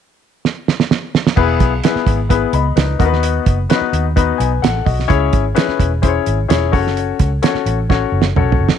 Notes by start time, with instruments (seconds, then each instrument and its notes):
0.45 snare
0.68 snare
0.80 snare
0.91 snare
1.15 snare
1.27 snare
1.36 fingered electric bass E1, grand piano B3 E4 G#4 B4, kick, crash
1.60 fingered electric bass B1, kick, closed hi-hat
1.83 grand piano B3 E4 G#4 B4, snare, closed hi-hat
1.95 muted fingered electric bass stroke, snare
2.06 fingered electric bass G#1, kick, closed hi-hat
2.29 grand piano B3 E4 G#4 B4, kick, closed hi-hat
2.53 fingered electric bass C#2, grand piano D#5 B5, closed hi-hat
2.76 fingered electric bass C#2, grand piano D#4 B4, snare, closed hi-hat
2.99 fingered electric bass D#2, grand piano B3 D#4 F#4 A#4, kick, closed hi-hat
3.06 grand piano B4
3.13 snare
3.23 closed hi-hat
3.46 fingered electric bass F#1, kick, closed hi-hat
3.69 grand piano B3 C#4 F#4 B4, snare, closed hi-hat
3.75 grand piano D#4
3.81 muted fingered electric bass stroke
3.93 fingered electric bass D#2, closed hi-hat
4.16 grand piano B3 D#4 F#4 B4, kick, closed hi-hat
4.38 fingered electric bass B1, grand piano B4 G#5, closed hi-hat
4.62 fingered electric bass A1, grand piano A4 F#5, snare, closed hi-hat
4.85 fingered electric bass B1, grand piano F#4 D#5, kick, open hi-hat
5.00 snare
5.08 fingered electric bass C#2, grand piano C#4 E4 G#4 C#5, kick, closed hi-hat
5.33 fingered electric bass G#1, kick, closed hi-hat
5.55 grand piano C#4 E4 G#4 B4, snare, closed hi-hat
5.68 muted fingered electric bass stroke, snare
5.80 fingered electric bass E1, kick, closed hi-hat
6.02 grand piano C#4 E4 G#4 C5, kick, closed hi-hat
6.08 grand piano C#5
6.26 fingered electric bass G#1, closed hi-hat
6.48 fingered electric bass E1, grand piano C#4 E4 G#4 C#5, snare, closed hi-hat
6.72 fingered electric bass F#1, grand piano C#4 F#4 A4 C#5, kick, open hi-hat
6.87 snare
6.97 closed hi-hat
7.19 fingered electric bass C#2, kick, closed hi-hat
7.42 grand piano C#4 F#4 A4 C#5, snare, closed hi-hat
7.54 muted fingered electric bass stroke, snare
7.66 fingered electric bass A1, closed hi-hat
7.89 grand piano C#4 F#4 A4 C#5, kick, snare
8.12 fingered electric bass F#1
8.22 snare
8.36 fingered electric bass B1, grand piano C#4 F#4 A4 C#5, mid tom
8.52 floor tom
8.59 fingered electric bass F#1
8.69 snare